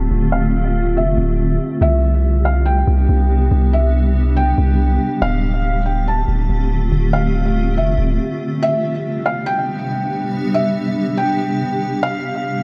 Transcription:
0, 0, Header, 1, 4, 480
1, 0, Start_track
1, 0, Key_signature, 0, "major"
1, 0, Tempo, 425532
1, 124, Time_signature, 4, 2, 24, 8
1, 14247, End_track
2, 0, Start_track
2, 0, Title_t, "Felt piano"
2, 0, Program_c, 0, 0
2, 363, Note_on_c, 0, 77, 74
2, 1041, Note_off_c, 0, 77, 0
2, 1094, Note_on_c, 0, 76, 78
2, 2004, Note_off_c, 0, 76, 0
2, 2051, Note_on_c, 0, 76, 97
2, 2725, Note_off_c, 0, 76, 0
2, 2764, Note_on_c, 0, 77, 76
2, 2992, Note_off_c, 0, 77, 0
2, 2995, Note_on_c, 0, 79, 83
2, 3914, Note_off_c, 0, 79, 0
2, 4211, Note_on_c, 0, 76, 81
2, 4885, Note_off_c, 0, 76, 0
2, 4925, Note_on_c, 0, 79, 85
2, 5839, Note_off_c, 0, 79, 0
2, 5887, Note_on_c, 0, 77, 98
2, 6562, Note_off_c, 0, 77, 0
2, 6603, Note_on_c, 0, 79, 66
2, 6832, Note_off_c, 0, 79, 0
2, 6855, Note_on_c, 0, 81, 73
2, 7764, Note_off_c, 0, 81, 0
2, 8045, Note_on_c, 0, 77, 73
2, 8722, Note_off_c, 0, 77, 0
2, 8770, Note_on_c, 0, 76, 80
2, 9682, Note_off_c, 0, 76, 0
2, 9730, Note_on_c, 0, 76, 103
2, 10404, Note_off_c, 0, 76, 0
2, 10442, Note_on_c, 0, 77, 82
2, 10671, Note_off_c, 0, 77, 0
2, 10674, Note_on_c, 0, 79, 91
2, 11594, Note_off_c, 0, 79, 0
2, 11893, Note_on_c, 0, 76, 87
2, 12565, Note_off_c, 0, 76, 0
2, 12606, Note_on_c, 0, 79, 85
2, 13520, Note_off_c, 0, 79, 0
2, 13568, Note_on_c, 0, 77, 104
2, 14243, Note_off_c, 0, 77, 0
2, 14247, End_track
3, 0, Start_track
3, 0, Title_t, "Ambient pad"
3, 0, Program_c, 1, 92
3, 0, Note_on_c, 1, 50, 78
3, 0, Note_on_c, 1, 57, 74
3, 0, Note_on_c, 1, 60, 74
3, 0, Note_on_c, 1, 65, 85
3, 0, Note_on_c, 1, 67, 86
3, 1998, Note_off_c, 1, 67, 0
3, 2006, Note_off_c, 1, 50, 0
3, 2006, Note_off_c, 1, 57, 0
3, 2006, Note_off_c, 1, 60, 0
3, 2006, Note_off_c, 1, 65, 0
3, 2044, Note_on_c, 1, 48, 80
3, 2044, Note_on_c, 1, 55, 74
3, 2045, Note_on_c, 1, 62, 75
3, 2045, Note_on_c, 1, 67, 88
3, 2046, Note_on_c, 1, 59, 73
3, 5846, Note_off_c, 1, 48, 0
3, 5846, Note_off_c, 1, 55, 0
3, 5846, Note_off_c, 1, 62, 0
3, 5847, Note_off_c, 1, 59, 0
3, 5883, Note_on_c, 1, 57, 74
3, 5885, Note_on_c, 1, 50, 80
3, 5885, Note_on_c, 1, 60, 73
3, 5886, Note_on_c, 1, 65, 87
3, 9680, Note_off_c, 1, 67, 0
3, 9685, Note_off_c, 1, 57, 0
3, 9686, Note_off_c, 1, 50, 0
3, 9686, Note_off_c, 1, 60, 0
3, 9687, Note_off_c, 1, 65, 0
3, 9721, Note_on_c, 1, 59, 75
3, 9722, Note_on_c, 1, 55, 75
3, 9722, Note_on_c, 1, 62, 79
3, 9723, Note_on_c, 1, 48, 82
3, 9724, Note_on_c, 1, 67, 95
3, 13524, Note_off_c, 1, 59, 0
3, 13525, Note_off_c, 1, 48, 0
3, 13525, Note_off_c, 1, 55, 0
3, 13525, Note_off_c, 1, 62, 0
3, 13562, Note_on_c, 1, 50, 82
3, 13564, Note_on_c, 1, 57, 73
3, 13564, Note_on_c, 1, 65, 91
3, 13566, Note_on_c, 1, 60, 75
3, 14247, Note_off_c, 1, 50, 0
3, 14247, Note_off_c, 1, 57, 0
3, 14247, Note_off_c, 1, 60, 0
3, 14247, Note_off_c, 1, 65, 0
3, 14247, Note_off_c, 1, 67, 0
3, 14247, End_track
4, 0, Start_track
4, 0, Title_t, "808-style bass"
4, 0, Program_c, 2, 38
4, 125, Note_on_c, 2, 26, 100
4, 1086, Note_on_c, 2, 29, 93
4, 1103, Note_off_c, 2, 26, 0
4, 1313, Note_off_c, 2, 29, 0
4, 1327, Note_on_c, 2, 26, 95
4, 1787, Note_off_c, 2, 26, 0
4, 2045, Note_on_c, 2, 36, 109
4, 3200, Note_off_c, 2, 36, 0
4, 3243, Note_on_c, 2, 36, 100
4, 3474, Note_off_c, 2, 36, 0
4, 3486, Note_on_c, 2, 36, 101
4, 3946, Note_off_c, 2, 36, 0
4, 3964, Note_on_c, 2, 36, 109
4, 5119, Note_off_c, 2, 36, 0
4, 5166, Note_on_c, 2, 36, 97
4, 5626, Note_off_c, 2, 36, 0
4, 5886, Note_on_c, 2, 26, 109
4, 7040, Note_off_c, 2, 26, 0
4, 7085, Note_on_c, 2, 26, 94
4, 7315, Note_off_c, 2, 26, 0
4, 7326, Note_on_c, 2, 26, 100
4, 7786, Note_off_c, 2, 26, 0
4, 7806, Note_on_c, 2, 26, 104
4, 8767, Note_on_c, 2, 29, 94
4, 8784, Note_off_c, 2, 26, 0
4, 8994, Note_off_c, 2, 29, 0
4, 9006, Note_on_c, 2, 26, 95
4, 9235, Note_off_c, 2, 26, 0
4, 14247, End_track
0, 0, End_of_file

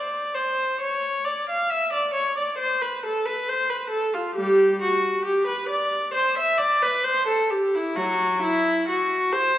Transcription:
0, 0, Header, 1, 2, 480
1, 0, Start_track
1, 0, Tempo, 887574
1, 440, Time_signature, 4, 2, 24, 8
1, 2835, Tempo, 907716
1, 5130, End_track
2, 0, Start_track
2, 0, Title_t, "Viola"
2, 0, Program_c, 0, 41
2, 0, Note_on_c, 0, 74, 68
2, 187, Note_on_c, 0, 72, 65
2, 194, Note_off_c, 0, 74, 0
2, 435, Note_off_c, 0, 72, 0
2, 438, Note_on_c, 0, 73, 74
2, 673, Note_on_c, 0, 74, 69
2, 675, Note_off_c, 0, 73, 0
2, 796, Note_off_c, 0, 74, 0
2, 807, Note_on_c, 0, 77, 64
2, 918, Note_on_c, 0, 76, 73
2, 920, Note_off_c, 0, 77, 0
2, 1038, Note_off_c, 0, 76, 0
2, 1044, Note_on_c, 0, 74, 69
2, 1156, Note_on_c, 0, 73, 72
2, 1159, Note_off_c, 0, 74, 0
2, 1277, Note_off_c, 0, 73, 0
2, 1286, Note_on_c, 0, 74, 65
2, 1396, Note_on_c, 0, 72, 76
2, 1404, Note_off_c, 0, 74, 0
2, 1519, Note_off_c, 0, 72, 0
2, 1523, Note_on_c, 0, 71, 71
2, 1644, Note_off_c, 0, 71, 0
2, 1654, Note_on_c, 0, 69, 72
2, 1760, Note_on_c, 0, 71, 71
2, 1767, Note_off_c, 0, 69, 0
2, 1881, Note_off_c, 0, 71, 0
2, 1884, Note_on_c, 0, 72, 83
2, 1999, Note_on_c, 0, 71, 66
2, 2002, Note_off_c, 0, 72, 0
2, 2108, Note_on_c, 0, 69, 70
2, 2118, Note_off_c, 0, 71, 0
2, 2229, Note_off_c, 0, 69, 0
2, 2239, Note_on_c, 0, 65, 65
2, 2352, Note_on_c, 0, 67, 85
2, 2353, Note_on_c, 0, 55, 64
2, 2356, Note_off_c, 0, 65, 0
2, 2575, Note_off_c, 0, 55, 0
2, 2587, Note_off_c, 0, 67, 0
2, 2605, Note_on_c, 0, 66, 76
2, 2837, Note_off_c, 0, 66, 0
2, 2839, Note_on_c, 0, 67, 76
2, 2953, Note_on_c, 0, 71, 79
2, 2954, Note_off_c, 0, 67, 0
2, 3070, Note_off_c, 0, 71, 0
2, 3071, Note_on_c, 0, 74, 81
2, 3305, Note_off_c, 0, 74, 0
2, 3308, Note_on_c, 0, 72, 80
2, 3427, Note_off_c, 0, 72, 0
2, 3436, Note_on_c, 0, 76, 82
2, 3542, Note_on_c, 0, 74, 82
2, 3551, Note_off_c, 0, 76, 0
2, 3666, Note_off_c, 0, 74, 0
2, 3670, Note_on_c, 0, 71, 76
2, 3785, Note_on_c, 0, 72, 84
2, 3789, Note_off_c, 0, 71, 0
2, 3906, Note_off_c, 0, 72, 0
2, 3907, Note_on_c, 0, 69, 75
2, 4024, Note_off_c, 0, 69, 0
2, 4030, Note_on_c, 0, 67, 65
2, 4149, Note_off_c, 0, 67, 0
2, 4160, Note_on_c, 0, 64, 73
2, 4271, Note_on_c, 0, 66, 86
2, 4274, Note_off_c, 0, 64, 0
2, 4274, Note_on_c, 0, 54, 71
2, 4496, Note_off_c, 0, 54, 0
2, 4511, Note_off_c, 0, 66, 0
2, 4516, Note_on_c, 0, 64, 83
2, 4749, Note_off_c, 0, 64, 0
2, 4758, Note_on_c, 0, 66, 80
2, 4992, Note_off_c, 0, 66, 0
2, 4997, Note_on_c, 0, 72, 86
2, 5130, Note_off_c, 0, 72, 0
2, 5130, End_track
0, 0, End_of_file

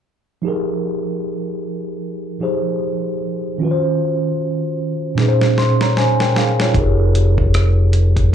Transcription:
0, 0, Header, 1, 4, 480
1, 0, Start_track
1, 0, Key_signature, -4, "minor"
1, 0, Tempo, 789474
1, 261, Time_signature, 4, 2, 24, 8
1, 5076, End_track
2, 0, Start_track
2, 0, Title_t, "Tine electric piano"
2, 0, Program_c, 0, 4
2, 254, Note_on_c, 0, 53, 52
2, 262, Note_on_c, 0, 63, 50
2, 272, Note_on_c, 0, 67, 48
2, 284, Note_on_c, 0, 68, 47
2, 294, Note_on_c, 0, 70, 56
2, 379, Control_c, 0, 64, 127
2, 1434, Note_off_c, 0, 53, 0
2, 1438, Note_off_c, 0, 63, 0
2, 1443, Note_off_c, 0, 67, 0
2, 1449, Note_off_c, 0, 68, 0
2, 1454, Note_off_c, 0, 70, 0
2, 1459, Note_on_c, 0, 53, 45
2, 1464, Note_on_c, 0, 63, 40
2, 1469, Note_on_c, 0, 67, 41
2, 1474, Note_on_c, 0, 68, 40
2, 1478, Note_on_c, 0, 72, 47
2, 2178, Note_on_c, 0, 51, 57
2, 2180, Note_off_c, 0, 53, 0
2, 2183, Note_off_c, 0, 63, 0
2, 2185, Note_off_c, 0, 67, 0
2, 2185, Note_on_c, 0, 61, 47
2, 2188, Note_off_c, 0, 68, 0
2, 2189, Control_c, 0, 64, 0
2, 2190, Note_off_c, 0, 72, 0
2, 2197, Note_on_c, 0, 65, 47
2, 2207, Note_on_c, 0, 66, 49
2, 2217, Note_on_c, 0, 71, 46
2, 2246, Note_off_c, 0, 71, 0
2, 2257, Note_on_c, 0, 72, 61
2, 2289, Control_c, 0, 64, 127
2, 3120, Note_off_c, 0, 51, 0
2, 3124, Note_off_c, 0, 61, 0
2, 3130, Note_off_c, 0, 65, 0
2, 3131, Note_on_c, 0, 46, 64
2, 3135, Note_off_c, 0, 66, 0
2, 3140, Note_on_c, 0, 61, 60
2, 3150, Control_c, 0, 64, 0
2, 3152, Note_on_c, 0, 63, 57
2, 3161, Note_off_c, 0, 72, 0
2, 3162, Note_on_c, 0, 68, 55
2, 3172, Note_on_c, 0, 71, 55
2, 3204, Note_off_c, 0, 71, 0
2, 3212, Note_on_c, 0, 72, 72
2, 3247, Control_c, 0, 64, 127
2, 3387, Note_off_c, 0, 68, 0
2, 3394, Note_on_c, 0, 84, 57
2, 3413, Note_off_c, 0, 72, 0
2, 3521, Note_off_c, 0, 84, 0
2, 3537, Note_on_c, 0, 82, 53
2, 3542, Note_on_c, 0, 73, 45
2, 3624, Note_off_c, 0, 82, 0
2, 3626, Note_off_c, 0, 73, 0
2, 3635, Note_on_c, 0, 80, 59
2, 3638, Note_on_c, 0, 72, 47
2, 3766, Note_off_c, 0, 72, 0
2, 3777, Note_on_c, 0, 79, 54
2, 3780, Note_on_c, 0, 70, 45
2, 3852, Note_off_c, 0, 80, 0
2, 3863, Note_off_c, 0, 79, 0
2, 3864, Note_off_c, 0, 70, 0
2, 3879, Note_on_c, 0, 77, 56
2, 3883, Note_on_c, 0, 68, 45
2, 4007, Note_off_c, 0, 77, 0
2, 4009, Note_off_c, 0, 68, 0
2, 4022, Note_on_c, 0, 73, 53
2, 4025, Note_on_c, 0, 65, 45
2, 4077, Note_off_c, 0, 46, 0
2, 4082, Note_off_c, 0, 61, 0
2, 4088, Note_off_c, 0, 63, 0
2, 4095, Note_on_c, 0, 63, 60
2, 4108, Note_on_c, 0, 67, 51
2, 4109, Control_c, 0, 64, 0
2, 4122, Note_on_c, 0, 68, 54
2, 4137, Note_on_c, 0, 70, 61
2, 4231, Control_c, 0, 64, 127
2, 4242, Note_off_c, 0, 73, 0
2, 4243, Note_off_c, 0, 65, 0
2, 5076, Note_off_c, 0, 63, 0
2, 5076, Note_off_c, 0, 67, 0
2, 5076, Note_off_c, 0, 68, 0
2, 5076, Note_off_c, 0, 70, 0
2, 5076, End_track
3, 0, Start_track
3, 0, Title_t, "Fingered electric bass"
3, 0, Program_c, 1, 33
3, 4105, Note_on_c, 1, 29, 64
3, 5076, Note_off_c, 1, 29, 0
3, 5076, End_track
4, 0, Start_track
4, 0, Title_t, "Drums"
4, 3148, Note_on_c, 9, 38, 48
4, 3209, Note_off_c, 9, 38, 0
4, 3292, Note_on_c, 9, 38, 44
4, 3353, Note_off_c, 9, 38, 0
4, 3392, Note_on_c, 9, 38, 54
4, 3452, Note_off_c, 9, 38, 0
4, 3532, Note_on_c, 9, 38, 51
4, 3592, Note_off_c, 9, 38, 0
4, 3630, Note_on_c, 9, 38, 67
4, 3691, Note_off_c, 9, 38, 0
4, 3771, Note_on_c, 9, 38, 58
4, 3832, Note_off_c, 9, 38, 0
4, 3869, Note_on_c, 9, 38, 84
4, 3930, Note_off_c, 9, 38, 0
4, 4011, Note_on_c, 9, 38, 70
4, 4072, Note_off_c, 9, 38, 0
4, 4101, Note_on_c, 9, 36, 89
4, 4103, Note_on_c, 9, 42, 52
4, 4162, Note_off_c, 9, 36, 0
4, 4164, Note_off_c, 9, 42, 0
4, 4348, Note_on_c, 9, 42, 51
4, 4408, Note_off_c, 9, 42, 0
4, 4487, Note_on_c, 9, 36, 77
4, 4548, Note_off_c, 9, 36, 0
4, 4585, Note_on_c, 9, 42, 70
4, 4589, Note_on_c, 9, 37, 91
4, 4646, Note_off_c, 9, 42, 0
4, 4650, Note_off_c, 9, 37, 0
4, 4822, Note_on_c, 9, 42, 50
4, 4883, Note_off_c, 9, 42, 0
4, 4965, Note_on_c, 9, 36, 73
4, 4966, Note_on_c, 9, 42, 43
4, 5025, Note_off_c, 9, 36, 0
4, 5026, Note_off_c, 9, 42, 0
4, 5076, End_track
0, 0, End_of_file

